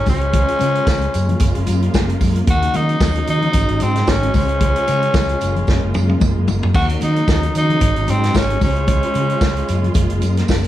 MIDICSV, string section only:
0, 0, Header, 1, 2, 480
1, 0, Start_track
1, 0, Tempo, 534283
1, 303, Time_signature, 4, 2, 24, 8
1, 9591, End_track
2, 0, Start_track
2, 0, Title_t, "String section"
2, 0, Program_c, 0, 48
2, 0, Note_on_c, 0, 49, 69
2, 0, Note_on_c, 0, 56, 64
2, 74, Note_on_c, 0, 65, 72
2, 80, Note_on_c, 0, 72, 66
2, 1000, Note_off_c, 0, 49, 0
2, 1009, Note_off_c, 0, 65, 0
2, 1016, Note_on_c, 0, 58, 70
2, 1017, Note_on_c, 0, 49, 77
2, 1020, Note_on_c, 0, 65, 85
2, 1022, Note_off_c, 0, 72, 0
2, 2196, Note_off_c, 0, 56, 0
2, 2209, Note_off_c, 0, 49, 0
2, 2210, Note_off_c, 0, 65, 0
2, 2227, Note_on_c, 0, 49, 74
2, 2228, Note_on_c, 0, 54, 73
2, 2230, Note_on_c, 0, 63, 90
2, 3158, Note_off_c, 0, 58, 0
2, 3180, Note_on_c, 0, 56, 74
2, 3888, Note_off_c, 0, 54, 0
2, 3889, Note_off_c, 0, 63, 0
2, 3900, Note_on_c, 0, 65, 78
2, 3902, Note_on_c, 0, 72, 66
2, 4837, Note_off_c, 0, 49, 0
2, 4852, Note_off_c, 0, 72, 0
2, 4861, Note_on_c, 0, 49, 72
2, 4861, Note_on_c, 0, 58, 63
2, 6030, Note_off_c, 0, 56, 0
2, 6037, Note_off_c, 0, 65, 0
2, 6048, Note_off_c, 0, 49, 0
2, 6056, Note_on_c, 0, 54, 73
2, 6057, Note_on_c, 0, 49, 78
2, 6057, Note_on_c, 0, 63, 86
2, 6997, Note_off_c, 0, 58, 0
2, 7022, Note_on_c, 0, 56, 78
2, 7720, Note_off_c, 0, 54, 0
2, 7721, Note_off_c, 0, 63, 0
2, 7746, Note_on_c, 0, 72, 68
2, 7747, Note_on_c, 0, 65, 86
2, 8672, Note_off_c, 0, 49, 0
2, 8693, Note_off_c, 0, 72, 0
2, 8693, Note_on_c, 0, 49, 68
2, 8698, Note_on_c, 0, 58, 60
2, 9591, Note_off_c, 0, 49, 0
2, 9591, Note_off_c, 0, 56, 0
2, 9591, Note_off_c, 0, 58, 0
2, 9591, Note_off_c, 0, 65, 0
2, 9591, End_track
0, 0, End_of_file